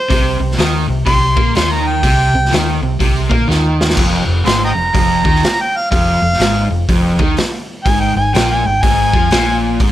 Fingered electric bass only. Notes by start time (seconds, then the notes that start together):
0.10 C2
0.40 C2
0.58 D#2
0.88 C2
1.06 C2
1.37 A#2
1.55 D#2
2.03 C2
2.33 C2
2.52 D#2
2.82 C2
3.00 C2
3.31 A#2
3.48 D#2
3.97 F1
4.28 F1
4.46 G#1
4.76 F1
4.95 F1
5.25 D#2
5.92 F1
6.22 F1
6.40 G#1
6.70 F1
6.89 F1
7.19 D#2
7.86 G#1
8.16 G#1
8.35 A#1
8.65 G#1
8.83 G#1
9.13 F2
9.32 A#1
9.80 G#1